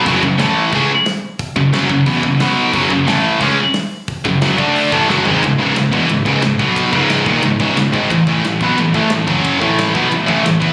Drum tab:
RD |--------|--------|--------|--------|
HH |o-o-o-o-|o-o-o-o-|o-o-o-o-|o-o-o---|
SD |--o---o-|--o---o-|--o---o-|--o---o-|
FT |--------|--------|--------|-------o|
BD |oo--o---|oo-ooo--|oo--o---|oo-o-o--|

RD |b-b-b-b-|b-b-b-b-|b-b-b-b-|b-b-b-b-|
HH |--------|--------|--------|--------|
SD |--o---o-|--o---o-|--o---o-|--o---o-|
FT |--------|--------|--------|--------|
BD |o--o-o-o|oo-o-o-o|oo-o-o-o|oo-o-o-o|